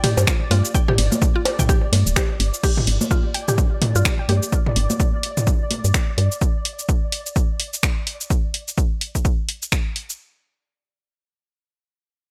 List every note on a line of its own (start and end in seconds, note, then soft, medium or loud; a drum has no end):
0.00 0.12 G4 medium
0.00 2.62 D5 medium
0.00 mid tom medium
0.00 open hi-hat medium
0.00 ride medium
0.00 high conga soft
0.17 0.25 G2 medium
0.17 high bongo medium
0.17 cabasa medium
0.27 finger snap loud
0.27 kick loud
0.27 cabasa soft
0.51 0.62 G2 loud
0.51 0.59 F4 medium
0.51 open hi-hat medium
0.51 ride medium
0.51 high conga medium
0.65 cabasa medium
0.74 0.80 G5 medium
0.74 kick loud
0.74 cabasa soft
0.88 0.94 G4 medium
0.88 mid tom loud
0.88 high bongo soft
0.98 1.09 G1 loud
0.98 open hi-hat loud
0.98 ride medium
1.12 high conga medium
1.12 cabasa medium
1.22 kick loud
1.22 cabasa soft
1.36 1.41 F4 medium
1.45 open hi-hat medium
1.45 ride medium
1.45 high bongo medium
1.59 1.63 G5 medium
1.59 kick medium
1.59 mid tom medium
1.59 cabasa medium
1.69 1.77 G4 medium
1.69 kick loud
1.69 cabasa soft
1.93 2.04 G2 medium
1.93 open hi-hat medium
1.93 ride medium
1.93 high conga soft
2.06 2.14 D1 medium
2.06 cabasa medium
2.16 2.22 G4 medium
2.16 finger snap loud
2.16 kick loud
2.16 high bongo soft
2.16 cabasa soft
2.40 2.51 G1 medium
2.40 open hi-hat medium
2.40 ride medium
2.54 cabasa medium
2.63 2.72 G4 medium
2.63 8.32 D5 medium
2.63 kick loud
2.63 crash loud
2.63 cabasa soft
2.77 mid tom medium
2.87 2.98 G1 loud
2.87 open hi-hat medium
3.01 high conga medium
3.01 cabasa medium
3.11 3.19 F4 medium
3.11 kick loud
3.11 cabasa soft
3.34 3.40 G5 medium
3.34 open hi-hat medium
3.48 3.54 G4 medium
3.48 mid tom medium
3.48 cabasa medium
3.58 kick loud
3.58 cabasa soft
3.82 mid tom loud
3.82 open hi-hat medium
3.82 high conga soft
3.95 4.03 G2 medium
3.95 4.01 F4 medium
3.95 cabasa medium
4.05 finger snap loud
4.05 kick loud
4.05 cabasa soft
4.19 4.23 G5 medium
4.29 4.40 G2 loud
4.29 4.37 G4 medium
4.29 open hi-hat medium
4.29 high conga medium
4.43 cabasa medium
4.52 kick loud
4.52 cabasa soft
4.66 mid tom medium
4.76 4.87 G1 loud
4.76 open hi-hat loud
4.90 high conga medium
4.90 cabasa soft
5.00 kick loud
5.00 cabasa soft
5.23 open hi-hat loud
5.37 mid tom medium
5.37 cabasa soft
5.47 kick loud
5.47 cabasa soft
5.71 open hi-hat medium
5.71 high conga medium
5.84 5.92 G2 medium
5.84 cabasa medium
5.94 finger snap loud
5.94 kick loud
5.94 cabasa soft
6.18 6.29 G2 loud
6.18 open hi-hat medium
6.32 cabasa soft
6.41 kick loud
6.41 cabasa soft
6.65 open hi-hat loud
6.79 cabasa soft
6.89 kick loud
6.89 cabasa soft
7.12 open hi-hat loud
7.26 cabasa soft
7.36 kick loud
7.36 cabasa soft
7.60 open hi-hat medium
7.73 cabasa medium
7.83 finger snap loud
7.83 kick loud
7.83 cabasa soft
8.07 open hi-hat medium
8.21 cabasa soft
8.30 kick loud
8.30 cabasa soft
8.54 open hi-hat loud
8.68 cabasa soft
8.78 kick loud
8.78 cabasa soft
9.01 open hi-hat medium
9.15 kick medium
9.15 cabasa soft
9.25 kick loud
9.25 cabasa soft
9.49 open hi-hat medium
9.62 cabasa soft
9.72 finger snap loud
9.72 kick loud
9.72 cabasa soft
9.96 open hi-hat medium
10.10 cabasa soft